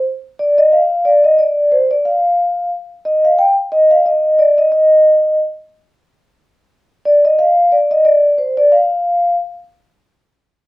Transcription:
X:1
M:4/4
L:1/16
Q:"Swing 16ths" 1/4=90
K:Fmix
V:1 name="Vibraphone"
z2 d e f2 d e d2 c d f4 | z2 e f g2 e f e2 d e e4 | z8 z2 d e f2 d e | d2 c d f4 z8 |]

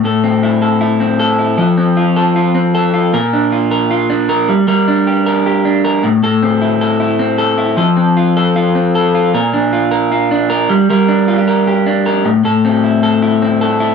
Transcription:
X:1
M:4/4
L:1/16
Q:1/4=155
K:Aphr
V:1 name="Clean electric guitar"
[A,,A]2 C2 E2 A2 E2 C2 A2 E2 | [F,A]2 C2 F2 A2 F2 C2 A2 F2 | [B,,B]2 D2 F2 B2 F2 D2 B2 G,2 | [G,B]2 D2 G2 B2 G2 D2 B2 A,,2 |
[A,,A]2 C2 E2 A2 E2 C2 A2 E2 | [F,A]2 C2 F2 A2 F2 C2 A2 F2 | [B,,B]2 D2 F2 B2 F2 D2 B2 G,2 | [G,B]2 D2 F G B2 G2 D2 B2 A,,2 |
[A,,A]2 C2 E2 A2 E2 C2 A2 E2 |]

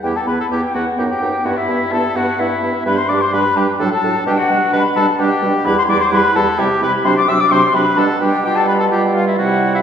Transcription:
X:1
M:3/4
L:1/16
Q:1/4=128
K:Em
V:1 name="Flute"
g a b a g2 f2 g g3 | f e3 a2 f2 e4 | b c' d' c' b2 g2 a a3 | g f3 b2 a2 g4 |
[K:G] b c' d' c' b2 a2 g2 b2 | c' d' e' d' c'2 b2 a2 g2 | g a b a g2 =f e ^f3 e |]
V:2 name="Oboe"
G A B A G2 F2 G G3 | F E3 A2 F2 E4 | B c d c B2 G2 A A3 | G F3 B2 A2 G4 |
[K:G] B c d c B2 A2 G2 B2 | c d e d c2 B2 A2 G2 | G A B A G2 =F E ^F3 E |]
V:3 name="Clarinet"
E2 E2 E2 E2 ^D2 D2 | E2 E2 E2 E2 E2 E2 | D2 D2 D2 D2 D2 D2 | D2 D2 D2 D2 D2 D2 |
[K:G] E2 E2 E2 E2 E2 E2 | D2 D2 D2 D2 D2 D2 | =F4 F4 E4 |]
V:4 name="French horn" clef=bass
B,2 B,2 B,2 B,2 B,2 B,2 | B,2 B,2 B,2 B,2 B,2 B,2 | G,2 G,2 G,2 G,2 F,2 F,2 | G,2 G,2 G,2 G,2 G,2 G,2 |
[K:G] G,2 G,2 G,2 G,2 G,2 G,2 | F,2 F,2 F,2 F,2 G,2 G,2 | G,4 G,4 G,4 |]
V:5 name="Bassoon" clef=bass
E,,2 E,,2 E,,2 E,,2 F,,2 F,,2 | G,,2 G,,2 G,,2 G,,2 G,,2 G,,2 | G,,2 G,,2 G,,2 G,,2 A,,2 A,,2 | B,,2 B,,2 B,,2 B,,2 B,,2 B,,2 |
[K:G] E,,2 E,,2 E,,2 E,,2 C,2 C,2 | C,2 C,2 C,2 C,2 B,,2 B,,2 | B,,8 C,4 |]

